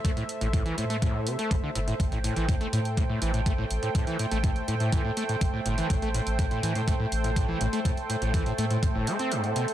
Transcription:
<<
  \new Staff \with { instrumentName = "Analog synth pad" } { \time 4/4 \key a \minor \tempo 4 = 123 << { e''1 | g''1~ | g''1~ | g''1~ |
g''1 | } \\ { <a a' c''>1~ | <a a' c''>1~ | <a a' c''>1~ | <a a' c''>1~ |
<a a' c''>1 | } >> }
  \new Staff \with { instrumentName = "Acid bass" } { \clef bass \time 4/4 \key a \minor a16 a,16 r16 a,16 a,16 e16 a,16 a16 a,8 c16 a16 a,16 d16 a,16 a,16 | r16 a,16 a,16 e16 a,16 a16 a,16 r16 a,16 a,16 e16 a,16 a16 a,16 r16 a,16 | a,16 e16 a,16 a16 a,16 r16 a,16 a,16 e16 a,16 a16 a,16 r16 a,16 a,16 e16 | a,16 a16 a,16 r16 a,16 a,16 e16 a,16 a16 a,16 r16 a,16 a,16 e16 a,16 a16 |
a,16 r16 a,16 a,16 e16 a,16 a16 a,16 r16 a,16 a16 c'16 g,16 a,16 b,16 r16 | }
  \new Staff \with { instrumentName = "Analog synth bass" } { \clef bass \time 4/4 \key a \minor r8. a,,8 r16 a,8. r8. a,,16 r16 g,,16 r16 | a,,8 r16 a,,8 r16 a,8. r16 a,,8. r16 a,,16 r16 | r8. a,,8 r16 a,8. r8. a,,16 r16 g,,16 r16 | a,,8 r16 a,,8 r16 a,8. r16 a,,8. r16 a,,16 r16 |
r8. a,,8 r16 a,8. g,,16 r4. | }
  \new DrumStaff \with { instrumentName = "Drums" } \drummode { \time 4/4 <hh bd>16 hh16 hh16 hh16 <hh bd>16 hh16 hh16 hh16 <hh bd>8 hh16 hh16 <hh bd>8 hh16 hh16 | <hh bd>16 hh16 hh16 hh16 <hh bd>16 hh16 hh16 hh16 <hh bd>8 hh16 hh16 <hh bd>8 hh16 hh16 | <hh bd>16 hh16 hh16 hh16 <hh bd>16 hh16 hh16 hh16 <hh bd>8 hh16 hh16 <hh bd>8 hh16 hh16 | <hh bd>16 hh16 hh16 hh16 <hh bd>16 hh16 hh16 hh16 <hh bd>8 hh16 hh16 <hh bd>8 hh16 hh16 |
<hh bd>16 hh16 hh16 hh16 <hh bd>16 hh16 hh16 hh16 <hh bd>8 hh16 hh16 hh16 hh16 hh16 hh16 | }
>>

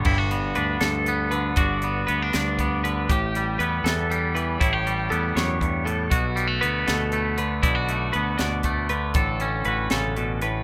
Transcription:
<<
  \new Staff \with { instrumentName = "Clean electric guitar" } { \time 6/8 \key g \lydian \tempo 4. = 79 r4 b'8 a'4 b'8 | d''4 b'8 d''4 b'8 | g'4 b'8 a'4 b'8 | cis''4 a'8 cis''4 a'8 |
r4 b'8 a'4 b'8 | d''4 b'8 d''4 b'8 | a'4 b'8 a'4 b'8 | }
  \new Staff \with { instrumentName = "Clean electric guitar" } { \clef bass \time 6/8 \key g \lydian << { <g b e'>16 fis'16 b8 d'4 b4 | fis'8 b8 b16 d'8. b4 | g'8 g8 b4 g4 | e'16 g'16 g8 b2 |
fis'8 g16 a16 b4 a4 | e'16 fis'16 a8 b4 a4 | a'8 cis'8 fis'2 | } \\ { <g, d>4. g,4 d8 | g,4. g,4 d8 | a,4. e,4 e8 | a,4. fis,8 g,8 a,8 |
b,4. b,4 d8 | b,4. b,4 d8 | a,4. cis8 b,8 a,8 | } >> }
  \new Staff \with { instrumentName = "Fingered electric bass" } { \clef bass \time 6/8 \key g \lydian g,,4 d,8 d,4. | g,,4 d,8 d,4. | a,,4 e,8 e,4. | a,,4 e,8 e,4. |
b,,4 d,8 d,4. | b,,4 d,8 d,4. | a,,4 a,,8 a,,4. | }
  \new DrumStaff \with { instrumentName = "Drums" } \drummode { \time 6/8 <cymc bd>8 hh8 hh8 <hh sn>8 hh8 hh8 | <hh bd>8 hh8 hh8 <hh sn>8 <hh bd>8 hh8 | <hh bd>8 hh8 hh8 <hh sn>8 hh8 hh8 | <hh bd>8 hh8 hh8 <hh sn>8 <hh bd>8 hh8 |
<hh bd>8 hh8 hh8 <hh sn>8 hh8 hh8 | <hh bd>8 hh8 hh8 <hh sn>8 <hh bd>8 hh8 | <hh bd>8 hh8 hh8 <hh sn>8 hh8 hh8 | }
>>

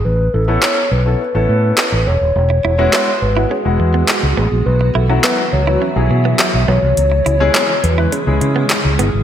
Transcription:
<<
  \new Staff \with { instrumentName = "Soft synth lead" } { \time 4/4 \key e \major \tempo 4 = 104 b'8 a'8 cis''8 b'8 b'4. cis''8~ | cis''4. b'8 gis'4. gis'8 | b'8 a'8 b'8 cis''8 e''4. cis''8~ | cis''4. b'8 gis'4. gis'8 | }
  \new Staff \with { instrumentName = "Grand piano" } { \time 4/4 \key e \major r8 <e' a'>16 <b cis' e' a'>8 r8 <b cis' e' a'>16 r16 <b cis' e' a'>4 r8. | r8 <e' fis'>16 <gis b e' fis'>8 r8 <gis b e' fis'>16 r16 <gis b e' fis'>4 r8. | r8 <e' fis'>16 <fis b e' fis'>8 r8 <fis b e' fis'>16 r16 <fis b e' gis'>4 r8. | r8 <e' gis'>16 <gis cis' e' gis'>8 r8 <gis cis' e' b'>16 r16 <gis cis' e' gis'>4 r8. | }
  \new Staff \with { instrumentName = "Clean electric guitar" } { \time 4/4 \key e \major r1 | r8 e'16 cis'16 b16 r8 e'16 cis'16 r8 b16 r8 b16 r16 | r8 e'16 cis'16 b16 r8 e'16 cis'16 r8 b16 r8 b16 r16 | r8 e'16 cis'16 b16 r8 e'16 cis'16 r8 b16 r8 b16 r16 | }
  \new Staff \with { instrumentName = "Ambient pad" } { \clef bass \time 4/4 \key e \major << { r1 | <e b fis'>1~ | <e b fis'>1 | <cis gis e'>1 | } \\ { r1 | gis1 | fis1 | r1 | } >> }
  \new Staff \with { instrumentName = "Fingered electric bass" } { \clef bass \time 4/4 \key e \major a,,8 a,,8 r8 b,,8 r16 a,,16 a,8 r16 a,,16 e,,16 dis,,16 | e,,8 e,,8 r8 gis,,8 r16 e,,16 e,8 r16 cis,16 a,,16 ais,,16 | b,,8 b,,8 r8 cis,8 r16 b,,16 b,8 r16 b,,16 b,,16 c,16 | cis,8 cis,8 r8 e,8 r16 cis,16 cis8 r16 cis,16 g,,16 gis,,16 | }
  \new DrumStaff \with { instrumentName = "Drums" } \drummode { \time 4/4 r4 <hc sn>4 r4 <hc sn>4 | r4 <hc sn>4 r4 <hc sn>4 | r4 <hc sn>4 r4 <hc sn>4 | hh8 hh8 <hc hh sn>8 hh8 hh8 hh8 <hc hh sn>8 hh8 | }
>>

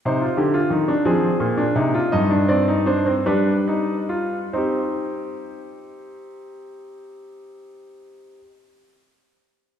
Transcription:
<<
  \new Staff \with { instrumentName = "Grand piano" } { \time 6/8 \key c \minor \tempo 4. = 45 << { c''4. aes'4. | ees''8 d''8 c''8 b'4. | <g' c''>2.~ | <g' c''>2. | } \\ { ees'16 f'16 g'16 f'16 ees'16 d'16 c'8. d'16 ees'16 f'16 | ees'16 d'16 c'16 ees'16 d'16 c'16 d'8 ees'8 f'8 | ees'2.~ | ees'2. | } >> }
  \new Staff \with { instrumentName = "Grand piano" } { \clef bass \time 6/8 \key c \minor c8 d8 ees8 f8 bes,8 c8 | g,4. g4. | c'2.~ | c'2. | }
>>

